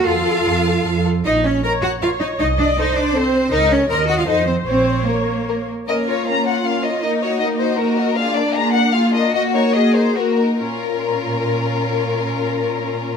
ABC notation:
X:1
M:3/4
L:1/16
Q:1/4=152
K:Bbm
V:1 name="Violin section"
=A2 A2 A2 A2 A2 A2 | z4 B4 B4 | z4 =A4 A4 | B4 c4 =A4 |
z4 B4 B4 | e2 d2 b2 g2 f2 e2 | e2 d2 e2 c2 B4 | f2 =d2 b2 g2 f2 e2 |
e2 d2 e2 c2 B4 | B12- | B12 |]
V:2 name="Violin section"
f8- f2 z2 | e2 d2 b2 g2 f2 e2 | e2 =d2 e2 d2 c4 | e2 d2 b2 g f e2 c2 |
c4 B6 z2 | [DB]2 [Fd]2 [DB]2 [Fd]2 [DB]2 [Fd]2 | [EB]2 [Ge]2 [EB]2 [Ge]2 [EB]2 [Ge]2 | [FA]2 [=DB]2 [FA]2 [DB]2 [FA]2 [DB]2 |
G2 [EB]2 G2 [EB]2 G2 [EB]2 | [FB]12- | [FB]12 |]
V:3 name="Cello section"
F8- F2 z2 | E2 D2 B2 G2 F2 E2 | E2 =D2 E2 D2 C4 | E2 D2 B2 G F E2 C2 |
C4 B,6 z2 | B4 F8 | E8 G4 | =D8 F4 |
G4 A4 G2 z2 | B,,12- | B,,12 |]
V:4 name="Viola section"
=A8- A2 z2 | z4 d4 d4 | e4 c8 | B4 e4 c4 |
d8- d2 z2 | B,4 B,4 B,4 | B,4 B,4 B,4 | B,4 B,4 B,4 |
B,4 B,4 B,4 | D12- | D12 |]
V:5 name="Double bass section" clef=bass
F,,4 F,,4 F,,4 | B,,,4 z8 | C,,4 z8 | D,,4 E,,4 F,,4 |
B,,,4 z8 | z12 | z12 | z12 |
z12 | z12 | z12 |]